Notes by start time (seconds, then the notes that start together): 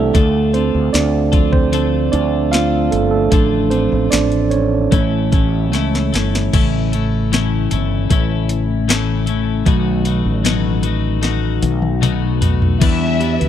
Already playing: C2 A3 C4 D4 E4 G4 A4 A#4 C5 D5 E5
0.14 D2 D3 A3 D4 F4 A4, kick, closed hi-hat
0.53 C4 D4 F4 A4 C5, closed hi-hat
0.74 D2
0.93 D2 D4 D5, snare, closed hi-hat
1.32 F3 A3 D4 F4 A4, kick, closed hi-hat
1.52 C4 C5, kick
1.72 D3 A3 D4 F4 A4, closed hi-hat
2.12 D2 D4 F4 A4 D5, closed hi-hat
2.52 A3 D4 F4 A4 F5, snare, closed hi-hat
2.91 G1 A3 A4, closed hi-hat
3.11 A3 A4
3.31 A1 A2 D3 F3 A3 D4 F4 A4, kick, closed hi-hat
3.70 A3 C4 D4 F4 A4 C5, closed hi-hat
3.92 A1
4.11 A1 D4 D5, snare, closed hi-hat
4.32 closed hi-hat
4.50 C#4 C#5, closed hi-hat
4.91 A1 A2 E3 A3 C#4 E4 A4, kick, closed hi-hat
5.32 A1 A3 C#4 E4 A4, kick, closed hi-hat
5.72 C#2 A3 C#4 E4 A4, snare, closed hi-hat
5.95 snare
6.13 G1 A3 C#4 E4 A4, snare, closed hi-hat
6.35 snare
6.53 A1 A2 C#3 E3 A3 C#4 E4 A4, kick, closed hi-hat, crash
6.92 A3 C#4 E4 A4, closed hi-hat
7.32 A2 E3 A3 C#4 E4 A4, snare, closed hi-hat
7.71 G1 A3 C#4 E4 A4, closed hi-hat
8.10 A1 A3 C#4 E4 A4, kick, closed hi-hat
8.49 closed hi-hat
8.88 A2 E3 A3 C#4 E4 A4, snare, closed hi-hat
9.26 A3 C#4 E4 A4, closed hi-hat
9.65 B1 B2 D#3 F#3 A3 D#4 F#4 B4, kick, closed hi-hat
10.05 A3 D#4 F#4 B4, closed hi-hat
10.25 A1
10.44 B2 F#3 A3 D#4 F#4 B4, snare, closed hi-hat
10.83 A3 D#4 F#4 B4, closed hi-hat
11.22 A3 D#4 F#4 B4, snare, closed hi-hat
11.62 B1, closed hi-hat, high tom
11.82 high tom
12.01 B2 F#3 A3 D#4 F#4 B4, closed hi-hat, mid tom
12.41 A3 D#4 F#4 B4, closed hi-hat, floor tom
12.62 floor tom
12.81 E2 E3 G3 D4 E4 B4 E5, kick, closed hi-hat, crash
13.01 B3
13.20 D4 E4 G4 B4, closed hi-hat
13.40 D2 B4, closed hi-hat